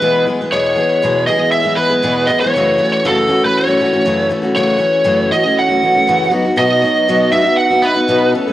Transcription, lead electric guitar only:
0.00 0.24 B4 medium
0.52 1.27 C#5 medium
1.27 1.51 D#5 medium
1.51 1.78 E5 medium
1.76 2.29 B4 medium
2.27 2.40 D#5 medium
2.41 2.92 C#5 medium
2.93 3.05 C#5 medium
3.06 3.44 A4 medium
3.45 3.56 B4 medium
3.57 4.28 C#5 medium
4.56 5.32 C#5 medium
5.32 5.57 D#5 medium
5.59 6.29 F#5 medium
6.59 7.32 D#5 medium
7.32 7.56 E5 medium
7.57 7.84 F#5 medium
7.82 8.30 B4 medium

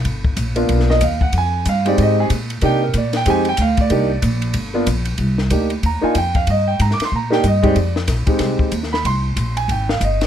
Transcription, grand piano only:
0.56 0.99 A#3 medium
0.56 0.98 B3 medium
0.56 0.99 D4 medium
0.56 0.99 F4 medium
0.90 1.02 D#5 medium
1.04 1.22 F5 medium
1.22 1.34 F#5 medium
1.38 1.66 G#5 medium
1.69 1.87 F5 medium
1.85 2.28 G#3 medium
1.85 2.28 C4 medium
1.85 2.28 D#4 medium
1.85 2.28 G4 medium
1.85 1.99 D5 medium
2.02 2.19 D#5 medium
2.20 2.27 G#4 medium
2.62 2.80 A#3 medium
2.62 2.80 D4 medium
2.62 2.80 D#4 medium
2.62 2.80 G4 medium
2.62 2.83 G5 medium
2.83 2.95 A#4 medium
2.97 3.15 D5 medium
3.17 3.28 G5 medium
3.26 3.44 G#3 medium
3.26 3.44 C4 medium
3.26 3.45 D#4 medium
3.26 3.45 G4 medium
3.30 3.47 G#5 medium
3.49 3.60 G5 medium
3.62 3.79 F5 medium
3.81 4.52 D5 medium
3.90 4.08 A#3 medium
3.90 4.08 D4 medium
3.90 4.09 D#4 medium
3.90 4.09 G4 medium
4.74 4.86 A#3 medium
4.74 4.86 B3 medium
4.74 4.86 D4 medium
4.74 4.86 F4 medium
5.51 5.69 A#3 medium
5.51 5.69 D4 medium
5.51 5.69 D#4 medium
5.51 5.69 G4 medium
5.86 6.04 A#5 medium
6.01 6.14 A#3 medium
6.01 6.14 D4 medium
6.01 6.14 D#4 medium
6.01 6.14 F4 medium
6.01 6.16 G#5 medium
6.18 6.36 G5 medium
6.36 6.48 F5 medium
6.50 6.68 D#5 medium
6.68 6.80 G5 medium
6.81 6.91 A#5 medium
6.93 7.02 D6 medium
7.05 7.14 C6 medium
7.16 7.33 A#5 medium
7.30 7.42 A#3 medium
7.30 7.42 D4 medium
7.30 7.43 D#4 medium
7.30 7.43 G4 medium
7.30 7.45 G5 medium
7.48 7.65 D#5 medium
7.62 7.74 G#3 medium
7.62 7.75 C4 medium
7.62 7.75 D#4 medium
7.62 7.75 G4 medium
7.62 7.95 D5 medium
8.26 8.69 G#3 medium
8.26 8.70 C4 medium
8.26 8.69 D#4 medium
8.26 8.70 G4 medium
8.93 9.05 B5 medium
9.06 9.53 C6 medium
9.57 9.69 G#5 medium
9.71 9.89 G5 medium
9.89 10.01 F5 medium
10.04 10.21 D#5 medium

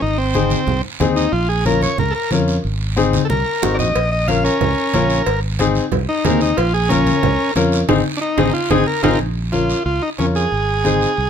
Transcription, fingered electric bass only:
0.02 0.54 G#1 medium
0.67 0.80 C2 medium
1.00 1.26 D#2 medium
1.33 1.85 A#1 loud
1.98 2.12 C#2 loud
2.31 2.57 F2 medium
2.65 3.17 G#1 medium
3.30 3.43 C2 medium
3.63 3.78 G#1 medium
3.79 3.94 A#1 medium
3.96 4.48 A#1 medium
4.61 4.74 C#2 medium
4.94 5.20 A#1 medium
5.27 5.79 G#1 loud
5.92 6.05 C2 medium
6.25 6.51 D#2 medium
6.58 7.10 A#1 loud
7.23 7.36 C#2 loud
7.56 7.82 F2 medium
7.89 8.01 G#1 loud
8.38 8.50 G#1 loud
8.70 8.83 G#1 loud
9.03 9.16 G#1 medium
9.20 9.73 A#1 medium
9.86 9.99 C#2 medium
10.19 10.45 F2 medium
10.52 11.05 G#1 medium
11.18 11.30 C2 medium

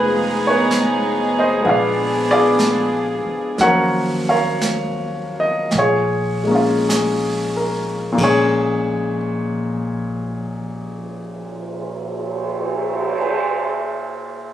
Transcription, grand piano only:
0.00 1.59 G#3 soft
0.00 1.61 B3 soft
0.00 1.64 D#4 soft
0.00 1.65 F4 soft
0.00 0.39 B4 medium
0.47 1.33 B4 medium
0.47 1.38 C#5 medium
1.39 1.65 C5 medium
1.39 1.68 D#5 medium
1.61 3.57 G#3 soft
1.61 3.58 B3 soft
1.61 3.59 D4 soft
1.66 2.31 F4 medium
1.66 2.29 D5 medium
1.66 3.24 F5 medium
2.31 3.58 F4 medium
2.31 3.58 G#4 medium
2.31 3.23 D5 medium
3.60 5.73 F3 soft
3.60 5.72 F#3 soft
3.60 5.73 A#3 soft
3.60 5.73 C#4 soft
3.60 4.29 A#4 medium
3.60 4.29 C#5 medium
3.60 4.24 F#5 medium
4.29 5.70 A#4 medium
4.29 5.70 C#5 medium
4.29 5.31 F5 medium
5.40 5.76 D#5 medium
5.78 6.53 F4 soft
5.78 6.87 G#4 soft
5.78 6.89 C#5 medium
6.44 8.16 G#3 soft
6.44 8.13 A#3 soft
6.51 8.19 C#4 soft
6.51 8.22 F4 medium
6.89 7.92 G#4 soft
7.56 8.51 A#4 soft
8.12 13.09 A#2 soft
8.12 13.12 A#3 soft
8.17 13.14 G#3 soft
8.17 13.18 C#4 soft
8.23 13.20 G#4 medium
8.23 13.17 C#5 medium

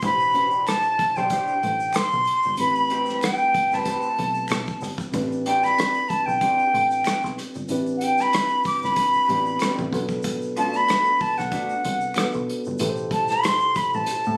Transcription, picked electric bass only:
0.03 0.63 A1 medium
1.00 muted picked electric bass stroke soft
1.17 1.29 B1 medium
1.63 1.91 A1 medium
1.95 muted picked electric bass stroke soft
2.13 2.25 B1 medium
2.45 2.60 G1 medium
2.60 3.19 A1 loud
3.55 muted picked electric bass stroke soft
3.73 3.85 G1 medium
4.19 4.47 B1 medium
4.50 4.66 B1 medium
4.82 5.10 G1 medium
5.14 5.73 A1 medium
6.10 muted picked electric bass stroke soft
6.27 6.40 B1 medium
6.74 7.02 A1 medium
7.05 muted picked electric bass stroke soft
7.24 7.36 B1 medium
7.55 7.69 G1 medium
7.69 8.29 A1 medium
8.66 muted picked electric bass stroke soft
8.83 8.95 G1 medium
9.15 muted picked electric bass stroke soft
9.29 9.57 A1 medium
9.79 9.91 A1 medium
9.93 10.84 B1 loud
11.21 muted picked electric bass stroke soft
11.39 11.51 B1 medium
11.85 12.13 C2 medium
12.17 muted picked electric bass stroke soft
12.35 12.46 B1 medium
12.67 12.79 G1 medium
12.80 13.39 A1 loud
13.76 muted picked electric bass stroke soft
13.94 14.06 A1 medium
14.27 14.37 A2 medium

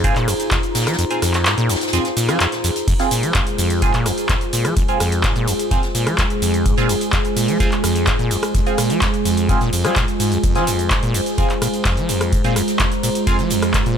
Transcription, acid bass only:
0.04 0.14 G#2 loud
0.16 0.29 A#2 loud
0.28 0.34 F2 medium
0.51 0.58 F2 medium
0.75 0.88 A#2 medium
0.87 0.97 F3 medium
0.99 1.05 F2 medium
1.22 1.48 F2 medium
1.46 1.56 G#2 loud
1.58 1.71 A#2 loud
1.70 1.76 F2 medium
1.93 2.00 F2 medium
2.17 2.30 A#2 medium
2.29 2.38 F3 medium
2.40 2.47 F2 medium
2.64 2.71 F2 medium
2.88 2.94 F2 medium
3.11 3.25 A#2 medium
3.23 3.33 F3 medium
3.35 3.41 F2 medium
3.58 3.84 F2 medium
3.82 3.92 G#2 loud
3.94 4.07 A#2 loud
4.06 4.12 F2 medium
4.29 4.36 F2 medium
4.53 4.67 A#2 medium
4.65 4.75 F3 medium
4.77 4.83 F2 medium
5.00 5.26 F2 medium
5.24 5.34 G#2 loud
5.36 5.49 A#2 loud
5.48 5.54 F2 medium
5.71 5.78 F2 medium
5.95 6.08 A#2 medium
6.07 6.16 F3 medium
6.19 6.25 F2 medium
6.42 6.67 F2 medium
6.66 6.75 G#2 loud
6.78 6.91 A#2 loud
6.89 6.96 F2 medium
7.13 7.19 F2 medium
7.37 7.50 A#2 medium
7.48 7.58 F3 medium
7.60 7.67 F2 medium
7.84 8.09 F2 medium
8.07 8.17 G#2 loud
8.19 8.32 A#2 loud
8.31 8.37 F2 medium
8.55 8.61 F2 medium
8.78 8.92 A#2 medium
8.90 9.00 F3 medium
9.02 9.08 F2 medium
9.25 9.51 F2 medium
9.49 9.59 G#2 loud
9.61 9.71 A#2 loud
9.73 9.86 F2 medium
9.85 9.98 G#3 medium
9.96 10.06 G#2 medium
10.20 10.33 G#2 medium
10.32 10.38 F2 loud
10.44 10.57 F2 medium
10.55 10.69 F3 medium
10.67 10.92 F2 medium
10.91 11.01 G#2 loud
11.03 11.16 A#2 loud
11.15 11.21 F2 medium
11.38 11.45 F2 medium
11.62 11.68 A#2 medium
11.85 11.99 F2 medium
11.97 12.10 F3 medium
12.09 12.34 F2 medium
12.33 12.42 G#2 loud
12.44 12.58 A#2 loud
12.56 12.63 F2 medium
12.80 12.86 F2 medium
13.03 13.10 A#2 medium
13.27 13.40 F2 medium
13.39 13.52 F3 medium
13.51 13.76 F2 medium
13.74 13.84 G#2 loud
13.86 13.98 A#2 loud

